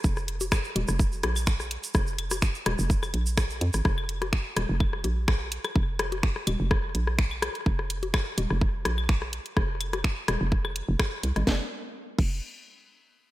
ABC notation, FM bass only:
X:1
M:4/4
L:1/16
Q:"Swing 16ths" 1/4=126
K:Bbm
V:1 name="FM bass" clef=bass
F,,,4- F,,, z E,,, F,,,3 B,,,4- B,,, z | F,,,4- F,,, z E,,, F,,,3 B,,,4 F,, A,,, | F,,,4- F,,, z E,,, F,,,3 B,,,4- B,,, z | F,,,4- F,,, z E,,, F,,,3 B,,,4- B,,, z |
F,,,4- F,,, z E,,, F,,,3 B,,,4- B,,, z | F,,,4- F,,, z E,,, F,,,4 F,,, z2 C,, A,,, | F,,, z4 z F,,,2 z8 |]